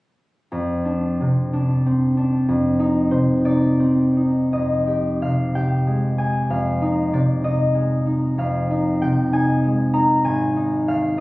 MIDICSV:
0, 0, Header, 1, 2, 480
1, 0, Start_track
1, 0, Tempo, 686499
1, 361, Time_signature, 6, 3, 24, 8
1, 840, Tempo, 634249
1, 2280, Tempo, 685714
1, 2760, Tempo, 738007
1, 3240, Tempo, 666667
1, 4200, Tempo, 626305
1, 8293, End_track
2, 0, Start_track
2, 0, Title_t, "Harp"
2, 0, Program_c, 0, 46
2, 361, Note_on_c, 0, 41, 48
2, 595, Note_on_c, 0, 62, 43
2, 843, Note_on_c, 0, 48, 39
2, 1080, Note_off_c, 0, 62, 0
2, 1090, Note_on_c, 0, 62, 48
2, 1340, Note_on_c, 0, 60, 48
2, 1566, Note_off_c, 0, 62, 0
2, 1575, Note_on_c, 0, 62, 46
2, 1801, Note_off_c, 0, 41, 0
2, 1810, Note_on_c, 0, 41, 60
2, 1824, Note_off_c, 0, 48, 0
2, 1825, Note_off_c, 0, 62, 0
2, 2045, Note_on_c, 0, 63, 53
2, 2285, Note_on_c, 0, 72, 67
2, 2289, Note_on_c, 0, 48, 46
2, 2512, Note_off_c, 0, 63, 0
2, 2519, Note_on_c, 0, 63, 55
2, 2523, Note_on_c, 0, 74, 79
2, 2755, Note_off_c, 0, 60, 0
2, 2763, Note_on_c, 0, 60, 49
2, 2998, Note_off_c, 0, 63, 0
2, 3006, Note_on_c, 0, 63, 43
2, 3230, Note_off_c, 0, 41, 0
2, 3236, Note_on_c, 0, 41, 45
2, 3241, Note_on_c, 0, 75, 64
2, 3264, Note_off_c, 0, 48, 0
2, 3487, Note_on_c, 0, 67, 41
2, 3737, Note_on_c, 0, 48, 37
2, 3739, Note_on_c, 0, 77, 62
2, 3758, Note_off_c, 0, 74, 0
2, 3969, Note_off_c, 0, 67, 0
2, 3977, Note_on_c, 0, 67, 44
2, 3977, Note_on_c, 0, 79, 73
2, 4207, Note_on_c, 0, 56, 41
2, 4441, Note_off_c, 0, 67, 0
2, 4446, Note_on_c, 0, 80, 65
2, 4450, Note_on_c, 0, 67, 36
2, 4682, Note_off_c, 0, 77, 0
2, 4683, Note_off_c, 0, 41, 0
2, 4689, Note_on_c, 0, 41, 47
2, 4694, Note_on_c, 0, 77, 64
2, 4711, Note_off_c, 0, 67, 0
2, 4712, Note_off_c, 0, 79, 0
2, 4713, Note_off_c, 0, 48, 0
2, 4924, Note_off_c, 0, 63, 0
2, 4933, Note_on_c, 0, 63, 45
2, 5081, Note_off_c, 0, 72, 0
2, 5172, Note_on_c, 0, 48, 40
2, 5177, Note_on_c, 0, 74, 62
2, 5400, Note_off_c, 0, 75, 0
2, 5402, Note_off_c, 0, 63, 0
2, 5409, Note_on_c, 0, 63, 45
2, 5412, Note_on_c, 0, 75, 62
2, 5580, Note_off_c, 0, 74, 0
2, 5605, Note_off_c, 0, 60, 0
2, 5635, Note_off_c, 0, 56, 0
2, 5644, Note_on_c, 0, 56, 42
2, 5879, Note_off_c, 0, 63, 0
2, 5888, Note_on_c, 0, 63, 44
2, 6122, Note_off_c, 0, 41, 0
2, 6125, Note_off_c, 0, 77, 0
2, 6129, Note_on_c, 0, 41, 53
2, 6137, Note_on_c, 0, 77, 65
2, 6155, Note_off_c, 0, 48, 0
2, 6371, Note_off_c, 0, 63, 0
2, 6380, Note_on_c, 0, 63, 44
2, 6617, Note_on_c, 0, 48, 40
2, 6619, Note_on_c, 0, 79, 67
2, 6848, Note_off_c, 0, 63, 0
2, 6848, Note_off_c, 0, 80, 0
2, 6855, Note_on_c, 0, 63, 51
2, 6859, Note_on_c, 0, 80, 83
2, 7017, Note_off_c, 0, 79, 0
2, 7084, Note_off_c, 0, 56, 0
2, 7093, Note_on_c, 0, 56, 49
2, 7314, Note_off_c, 0, 63, 0
2, 7321, Note_on_c, 0, 63, 47
2, 7324, Note_on_c, 0, 82, 79
2, 7550, Note_off_c, 0, 80, 0
2, 7556, Note_on_c, 0, 32, 56
2, 7561, Note_on_c, 0, 80, 75
2, 7581, Note_off_c, 0, 41, 0
2, 7583, Note_off_c, 0, 77, 0
2, 7585, Note_off_c, 0, 48, 0
2, 7731, Note_off_c, 0, 82, 0
2, 7795, Note_off_c, 0, 63, 0
2, 7804, Note_on_c, 0, 63, 48
2, 8044, Note_on_c, 0, 39, 45
2, 8048, Note_on_c, 0, 77, 75
2, 8263, Note_off_c, 0, 63, 0
2, 8268, Note_off_c, 0, 75, 0
2, 8293, Note_off_c, 0, 32, 0
2, 8293, Note_off_c, 0, 39, 0
2, 8293, Note_off_c, 0, 56, 0
2, 8293, Note_off_c, 0, 77, 0
2, 8293, Note_off_c, 0, 80, 0
2, 8293, End_track
0, 0, End_of_file